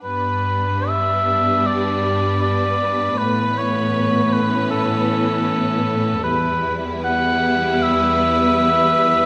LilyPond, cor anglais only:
\new Staff \with { instrumentName = "Cor anglais" } { \time 4/4 \key g \lydian \tempo 4 = 78 b'4 e''4 d''4 d''4 | b'8 cis''4 b'8 a'2 | b'8 r8 fis''4 e''4 e''4 | }